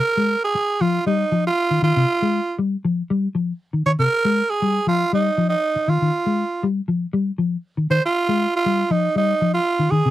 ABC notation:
X:1
M:4/4
L:1/16
Q:1/4=119
K:Cphr
V:1 name="Tenor saxophone"
B3 A3 F2 E3 F3 F2- | F4 z8 z2 d B- | B3 A3 F2 E3 E3 F2- | F4 z8 z2 c F- |
F3 F3 E2 E3 F3 A2 |]
V:2 name="Clean electric guitar" clef=bass
z A,2 z3 F,2 G,2 F,2 z E, E, C, | z A,2 z G,2 F,2 G,2 F,2 z E, E, C, | z A,2 z G,2 F,2 G,2 F,2 z2 E, E, | z A,2 z G,2 F,2 G,2 F,2 z E, E, z |
z A,2 z G,2 F,2 G,2 F,2 z E, E, C, |]